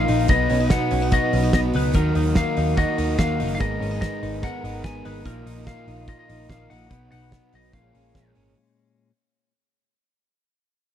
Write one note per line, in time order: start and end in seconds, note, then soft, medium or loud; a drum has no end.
0.00 0.29 A#2 medium
0.00 0.33 A#3 medium
0.00 0.26 D#4 medium
0.00 0.26 F4 medium
0.00 0.33 F4 medium
0.00 0.26 A#4 medium
0.00 0.29 F5 medium
0.08 0.26 A#1 medium
0.08 0.29 F3 soft
0.08 0.30 A#3 medium
0.08 0.29 D#4 medium
0.08 open hi-hat medium
0.28 0.46 B1 loud
0.28 0.50 B2 medium
0.28 0.50 F#3 medium
0.28 0.50 B3 medium
0.28 1.91 D#4 medium
0.28 0.49 D#4 medium
0.28 1.92 F#4 medium
0.28 1.92 B4 medium
0.28 0.72 D#5 loud
0.28 kick loud
0.28 closed hi-hat medium
0.49 0.76 B1 loud
0.49 0.71 F#3 soft
0.49 0.71 B3 medium
0.49 0.60 C#4 medium
0.49 0.71 D#4 medium
0.49 open hi-hat medium
0.60 0.91 D#4 medium
0.70 1.12 B2 medium
0.70 1.13 F#3 medium
0.70 1.13 B3 medium
0.70 1.14 D#4 medium
0.70 1.13 F#5 medium
0.70 kick loud
0.70 snare loud
0.70 closed hi-hat medium
0.91 1.17 B1 medium
0.91 1.02 C#4 medium
0.91 open hi-hat medium
1.02 1.33 D#4 medium
1.12 1.33 B2 medium
1.12 1.33 F#3 medium
1.12 1.34 B3 medium
1.12 1.33 D#4 medium
1.12 1.99 F#4 medium
1.12 1.51 D#5 loud
1.12 kick loud
1.12 closed hi-hat medium
1.33 1.50 B1 medium
1.33 1.55 F#3 soft
1.33 1.55 B3 soft
1.33 1.44 C#4 medium
1.33 1.54 D#4 medium
1.33 open hi-hat medium
1.44 1.73 D#4 soft
1.53 1.70 B1 medium
1.53 1.75 B2 medium
1.53 1.75 F#3 medium
1.53 1.74 B3 medium
1.53 1.74 D#4 medium
1.53 1.60 D#5 loud
1.53 kick loud
1.53 snare loud
1.53 closed hi-hat medium
1.73 1.95 C#2 medium
1.73 1.95 F#3 soft
1.73 1.95 B3 soft
1.73 1.95 D#4 medium
1.73 1.95 B4 medium
1.73 open hi-hat medium
1.94 2.11 D#2 loud
1.94 2.15 D#3 medium
1.94 2.16 F#3 medium
1.94 2.15 A#3 medium
1.94 3.57 D#4 medium
1.94 2.14 D#4 medium
1.94 3.57 F#4 medium
1.94 2.33 A#4 medium
1.94 3.58 A#4 medium
1.94 kick loud
1.94 closed hi-hat medium
2.15 2.41 D#2 medium
2.15 2.37 F#3 soft
2.15 2.36 A#3 soft
2.15 2.36 D#4 medium
2.15 open hi-hat medium
2.35 2.77 D#3 medium
2.35 2.77 F#3 medium
2.35 2.79 A#3 medium
2.35 2.80 D#4 medium
2.35 2.75 F5 medium
2.35 kick loud
2.35 snare loud
2.35 closed hi-hat medium
2.57 2.83 D#2 loud
2.57 2.98 D#4 medium
2.57 open hi-hat medium
2.77 2.98 D#3 medium
2.77 2.98 F#3 medium
2.77 2.98 A#3 medium
2.77 2.97 D#4 medium
2.77 3.64 F#4 medium
2.77 3.18 D#5 medium
2.77 kick loud
2.77 closed hi-hat medium
2.98 3.15 D#2 medium
2.98 3.17 F#3 soft
2.98 3.18 A#3 medium
2.98 3.18 D#4 medium
2.98 open hi-hat medium
3.17 3.42 D#2 medium
3.17 3.39 D#3 medium
3.17 3.39 F#3 medium
3.17 3.39 A#3 medium
3.17 3.39 D#4 medium
3.17 3.54 F5 medium
3.17 kick loud
3.17 snare loud
3.17 closed hi-hat medium
3.40 3.57 F#1 medium
3.40 3.60 F#3 soft
3.40 3.60 A#3 soft
3.40 3.59 D#4 soft
3.40 open hi-hat medium
3.55 3.60 F5 medium
3.59 3.77 G#1 loud
3.59 3.80 G#2 medium
3.59 3.81 D#3 medium
3.59 3.81 G#3 medium
3.59 5.22 B3 medium
3.59 3.81 B3 medium
3.59 3.79 D#4 medium
3.59 5.22 G#4 medium
3.59 5.22 A#4 medium
3.59 3.79 A#4 medium
3.59 4.00 D#5 medium
3.59 kick loud
3.59 closed hi-hat medium
3.80 4.07 G#1 loud
3.80 4.00 G#3 soft
3.80 4.01 B3 soft
3.80 3.91 C#4 medium
3.80 4.01 D#4 medium
3.80 4.01 A#4 medium
3.80 open hi-hat medium
3.91 4.22 D#4 medium
4.00 4.42 G#2 medium
4.00 4.86 D#3 medium
4.00 4.41 G#3 medium
4.00 4.42 B3 medium
4.00 4.43 D#4 medium
4.00 4.44 A#4 medium
4.00 4.44 D#5 medium
4.00 kick loud
4.00 snare loud
4.00 closed hi-hat medium
4.23 4.48 G#1 loud
4.23 4.64 D#4 medium
4.23 open hi-hat medium
4.42 4.63 G#3 medium
4.42 4.63 B3 medium
4.42 4.64 D#4 medium
4.42 4.63 A#4 medium
4.42 4.84 F#5 loud
4.42 kick loud
4.42 closed hi-hat medium
4.64 4.81 G#1 loud
4.64 4.85 G#3 soft
4.64 4.85 B3 soft
4.64 4.85 D#4 soft
4.64 4.84 A#4 medium
4.64 open hi-hat medium
4.84 5.01 G#1 medium
4.84 5.05 G#2 medium
4.84 5.06 D#3 medium
4.84 5.06 G#3 medium
4.84 5.06 B3 medium
4.84 5.06 D#4 medium
4.84 5.04 A#4 medium
4.84 5.05 G#5 medium
4.84 kick loud
4.84 snare loud
4.84 closed hi-hat medium
5.05 5.22 G#1 loud
5.05 5.27 G#3 soft
5.05 5.27 B3 soft
5.05 5.26 D#4 soft
5.05 5.26 A#4 soft
5.05 5.25 B4 medium
5.05 open hi-hat medium
5.25 5.42 A#1 loud
5.25 5.47 A#2 medium
5.25 5.47 D#3 medium
5.25 5.47 F3 medium
5.25 5.46 A#3 medium
5.25 6.88 D#4 medium
5.25 5.45 D#4 medium
5.25 6.88 F4 medium
5.25 5.68 A#4 medium
5.25 6.88 A#4 medium
5.25 kick loud
5.25 closed hi-hat medium
5.46 5.72 A#1 loud
5.46 5.67 F3 soft
5.46 5.67 A#3 soft
5.46 5.67 D#4 medium
5.46 open hi-hat medium
5.67 6.08 A#2 medium
5.67 6.07 D#3 medium
5.67 6.08 F3 medium
5.67 6.09 A#3 medium
5.67 6.09 D#4 medium
5.67 6.08 F5 medium
5.67 kick loud
5.67 snare loud
5.67 closed hi-hat medium
5.88 6.13 A#1 loud
5.88 6.28 D#4 medium
5.88 open hi-hat medium
6.08 6.29 D#3 medium
6.08 6.29 F3 medium
6.08 6.30 A#3 medium
6.08 6.28 D#4 medium
6.08 6.95 F4 medium
6.08 6.18 D#5 medium
6.08 kick loud
6.08 closed hi-hat medium
6.19 6.49 D#5 medium
6.29 6.46 A#1 medium
6.29 6.49 F3 soft
6.29 6.49 A#3 soft
6.29 6.49 D#4 medium
6.29 open hi-hat medium
6.49 6.66 A#1 loud
6.49 6.70 A#2 medium
6.49 6.70 D#3 medium
6.49 6.70 F3 medium
6.49 6.70 A#3 medium
6.49 6.69 D#4 medium
6.49 6.71 F5 medium
6.49 kick loud
6.49 snare loud
6.49 closed hi-hat medium
6.70 6.88 A#1 medium
6.70 6.90 F3 soft
6.70 6.91 A#3 medium
6.70 6.91 D#4 medium
6.70 7.10 F#5 medium
6.70 open hi-hat medium
6.90 7.08 B1 loud
6.90 7.11 B2 medium
6.90 7.12 F#3 medium
6.90 7.12 B3 medium
6.90 7.72 D#4 medium
6.90 7.10 D#4 medium
6.90 7.72 F#4 medium
6.90 7.72 B4 medium
6.90 kick loud
6.90 closed hi-hat medium
7.11 7.38 B1 loud
7.11 7.30 F#3 soft
7.11 7.31 B3 soft
7.11 7.32 D#4 medium
7.11 7.54 F#5 medium
7.11 open hi-hat medium
7.31 7.72 B2 medium
7.31 7.73 F#3 medium
7.31 7.73 B3 medium
7.31 7.74 D#4 medium
7.31 kick loud
7.31 snare loud
7.31 closed hi-hat medium
7.53 7.70 B1 loud
7.53 7.78 D#4 medium
7.53 7.73 D#5 medium
7.53 open hi-hat medium
7.72 7.91 A#1 loud
7.72 7.94 A#2 medium
7.72 7.94 F3 medium
7.72 7.93 G#3 medium
7.72 8.54 C#4 medium
7.72 7.91 C#4 medium
7.72 8.55 G#4 medium
7.72 8.55 A#4 medium
7.72 8.32 F5 medium
7.72 kick loud
7.72 closed hi-hat medium
7.93 8.12 A#1 medium
7.93 8.14 F3 soft
7.93 8.14 G#3 soft
7.93 8.14 C#4 soft
7.93 open hi-hat medium
8.14 8.32 A#1 loud
8.14 8.35 A#2 medium
8.14 8.35 F3 medium
8.14 8.33 G#3 medium
8.14 8.32 C#4 medium
8.14 kick loud
8.14 snare loud
8.14 closed hi-hat medium
8.33 8.53 G#1 medium
8.33 8.57 F3 soft
8.33 8.56 G#3 medium
8.33 8.55 C#4 medium
8.33 open hi-hat medium